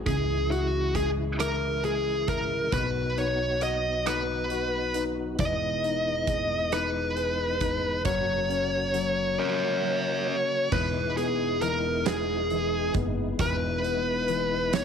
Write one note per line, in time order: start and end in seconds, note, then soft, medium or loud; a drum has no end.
0.00 2.69 G#3 medium
0.06 2.69 C#2 medium
0.06 2.70 C#3 medium
0.06 2.69 C#3 soft
0.06 2.70 E3 medium
0.06 2.70 E4 medium
0.06 0.51 G#4 medium
0.06 kick loud
0.06 closed hi-hat medium
0.50 1.39 E4 soft
0.50 0.96 F#4 medium
0.50 closed hi-hat soft
0.95 1.82 G#3 medium
0.95 1.08 G#4 medium
0.95 kick medium
0.95 closed hi-hat medium
1.40 2.26 E4 medium
1.40 1.85 A#4 medium
1.40 cross-stick loud
1.40 closed hi-hat medium
1.84 2.70 G#3 soft
1.84 2.29 G#4 medium
1.84 closed hi-hat soft
2.27 2.71 E4 soft
2.27 2.73 A#4 medium
2.27 kick medium
2.27 closed hi-hat medium
2.72 5.35 B1 medium
2.72 5.35 B2 medium
2.72 5.37 F#3 medium
2.72 8.02 B3 medium
2.72 8.02 D#4 medium
2.72 5.37 F#4 medium
2.72 3.19 B4 medium
2.72 kick medium
2.72 closed hi-hat medium
3.17 4.04 D#4 soft
3.17 3.59 C#5 medium
3.17 closed hi-hat soft
3.61 4.49 F#4 medium
3.61 4.08 D#5 medium
3.61 closed hi-hat medium
4.06 4.94 D#4 medium
4.06 5.02 B4 medium
4.06 cross-stick loud
4.06 closed hi-hat medium
4.50 5.37 F#4 medium
4.50 closed hi-hat soft
4.94 5.38 D#4 soft
4.94 closed hi-hat medium
5.39 8.06 E1 medium
5.39 8.02 E3 medium
5.39 8.04 E3 medium
5.39 8.04 G#3 medium
5.39 6.77 D#5 medium
5.39 kick medium
5.39 closed hi-hat medium
5.84 6.71 D#4 soft
5.84 closed hi-hat soft
6.27 7.15 G#4 medium
6.27 kick medium
6.27 closed hi-hat medium
6.72 7.59 D#4 soft
6.72 8.02 B4 medium
6.72 cross-stick loud
6.72 closed hi-hat medium
7.17 8.03 G#4 soft
7.17 closed hi-hat soft
7.61 8.04 D#4 soft
7.61 kick medium
7.61 closed hi-hat medium
8.05 9.35 F#1 medium
8.05 10.69 C#3 medium
8.05 8.93 F#3 medium
8.05 10.70 F#3 medium
8.05 10.70 A#3 medium
8.05 10.70 F#4 medium
8.05 9.38 C#5 medium
8.05 kick loud
8.05 closed hi-hat medium
8.50 9.37 C#4 medium
8.50 closed hi-hat soft
8.94 9.81 F#3 medium
8.94 closed hi-hat medium
9.38 10.26 C#4 soft
9.38 10.35 A#4 medium
9.38 10.77 C#5 medium
9.82 10.69 F#3 medium
10.28 10.71 C#4 medium
10.72 12.91 E1 medium
10.72 11.60 E3 medium
10.72 14.85 G#3 medium
10.72 13.37 B3 medium
10.72 14.85 D#4 medium
10.72 14.85 E4 medium
10.72 11.14 B4 medium
10.72 kick loud
10.72 crash medium
11.16 12.04 B3 soft
11.16 11.62 G#4 medium
11.16 closed hi-hat soft
11.61 12.50 E3 medium
11.61 12.06 A#4 medium
11.61 closed hi-hat medium
12.05 12.94 B3 medium
12.05 12.91 G#4 medium
12.05 snare loud
12.05 closed hi-hat medium
12.50 13.38 E3 medium
12.50 closed hi-hat soft
12.94 13.37 F#1 medium
12.94 13.84 B3 medium
12.94 kick loud
12.94 closed hi-hat soft
13.38 14.85 E1 medium
13.38 14.27 E3 medium
13.38 14.85 B3 medium
13.38 14.78 B4 medium
13.38 kick loud
13.38 closed hi-hat loud
13.84 14.71 B3 soft
13.84 closed hi-hat soft
14.28 14.85 E3 medium
14.28 closed hi-hat medium
14.72 14.85 B3 medium
14.72 14.85 C#5 loud
14.72 snare loud
14.72 closed hi-hat medium